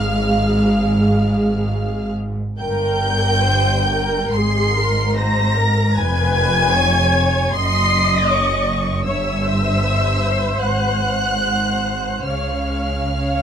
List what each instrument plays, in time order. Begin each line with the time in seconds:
Already playing: double bass section G#1, cello section G#2, viola section G#4, violin section F5 F6
2.59 double bass section G1, cello section G2, viola section A#4, violin section G5 G6
3.42 viola section C5
3.87 viola section A#4
4.32 double bass section G#1, cello section G#2, viola section G#4, violin section C6 C7
4.75 viola section A#4
5.17 viola section C5, violin section A#5 A#6
5.58 viola section A#4
5.97 double bass section F1, cello section F2, viola section B4, violin section G#5 G#6
6.74 viola section C#5
7.52 double bass section F#1, cello section F#2, viola section D#5, violin section C6 C7
8.29 violin section C#5 C#6
9.05 double bass section G1, cello section G2, viola section C#5, violin section E5 E6
9.43 viola section C5
10.60 double bass section G#1, cello section G#2, violin section F#5 F#6
11.40 viola section C5
12.26 double bass section C#2, cello section C#3, viola section C#5, violin section F5 F6
13.16 viola section C#5